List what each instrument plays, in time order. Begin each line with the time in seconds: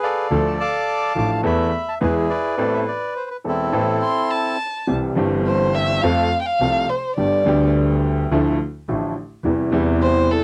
Already playing: bandoneon G#4 B4
0.03 bandoneon A4 D5 F5
0.31 double bass D2, upright piano D2 D3 F3 A3 D4 A4
0.48 bandoneon A5
0.60 bandoneon F5 A5 D6
1.15 double bass A1, upright piano A1 A2 F3 A3 D4 A4, bandoneon D6
1.43 upright piano E2 E3 A3 B3 A4, double bass E2, bandoneon E5 B5
1.88 bandoneon A5
2.01 upright piano E2 E3 G#3 B3 G#4, double bass E2, bandoneon E4 G#4 B4
2.30 bandoneon B4 D5
2.58 upright piano A1 A2 E3 B3 C4 A4
2.74 bandoneon E5
2.88 bandoneon D5
3.16 bandoneon C5
3.30 bandoneon B4
3.44 upright piano E1 E2 E3 B3 C4 A4, bandoneon A4
3.48 bandoneon C4 E4
3.72 upright piano A1 A2 E3 B3 C4 A4
4.03 violin C6
4.31 violin A5
4.87 upright piano C2 C3 E3 G3 C4 G4, double bass C2
5.15 double bass G1, upright piano G1 G2 E3 G3 C4 G4
5.47 violin C5
5.75 violin E5
6.02 double bass F2, upright piano F2 F3 A3 C4 A4, violin F5
6.41 violin G5
6.46 violin F5
6.60 double bass C2, upright piano C2 C3 F3 A3 C4 A4
6.89 violin C5
7.17 double bass G1, upright piano G1 G2 D3 G3 B3 G4, violin D5
7.46 double bass D2, upright piano D2 D3 G3 B3 G4
8.30 double bass D2, upright piano D2 D3 F3 A3 E4
8.88 upright piano A1 A2 D3 F3 A3 E4, double bass A1
9.44 double bass E2, upright piano E2 C3 E3 G3 E4
9.70 double bass E2, upright piano E2 C3 E3 G3 E4
10.03 violin C5
10.31 violin A4